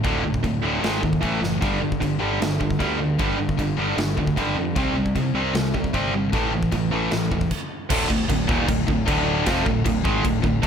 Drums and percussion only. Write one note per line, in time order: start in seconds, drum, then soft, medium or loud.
0.04 kick loud
0.04 china soft
0.34 kick medium
0.44 kick medium
0.44 china soft
0.84 snare loud
0.84 china medium
1.03 kick medium
1.13 kick medium
1.23 kick medium
1.23 china soft
1.43 snare medium
1.62 kick loud
1.62 china medium
1.92 kick medium
2.02 kick medium
2.02 china medium
2.42 snare loud
2.42 china soft
2.61 kick medium
2.71 kick medium
2.80 kick medium
2.80 china soft
3.19 kick loud
3.19 china soft
3.49 kick medium
3.59 kick medium
3.59 china soft
3.98 snare loud
3.98 china soft
4.18 kick medium
4.27 kick medium
4.37 kick medium
4.37 china soft
4.76 kick loud
4.76 china soft
5.06 kick medium
5.16 kick medium
5.16 china medium
5.55 snare loud
5.55 china medium
5.74 kick medium
5.84 kick medium
5.94 kick medium
5.94 china soft
6.33 kick loud
6.33 china medium
6.63 kick medium
6.72 kick medium
6.72 china medium
7.11 snare medium
7.11 china medium
7.32 kick medium
7.41 kick medium
7.51 kick medium
7.51 crash medium
7.90 kick loud
7.90 crash loud
7.90 crash medium
8.10 kick medium
8.29 kick loud
8.29 crash medium
8.49 kick loud
8.68 kick loud
8.68 crash medium
8.88 kick medium
9.08 kick loud
9.08 crash medium
9.46 kick loud
9.46 snare loud
9.46 crash medium
9.66 kick medium
9.86 kick medium
9.86 crash medium
10.05 kick loud
10.25 kick loud
10.25 crash medium
10.44 kick medium
10.63 kick loud
10.63 crash medium